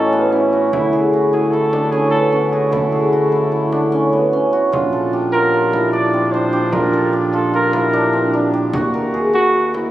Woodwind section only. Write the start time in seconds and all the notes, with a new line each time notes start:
Already playing: E3 A3 C#4
0.73 D3 E4
4.71 F3 A#3 D4
8.73 D#3 F#4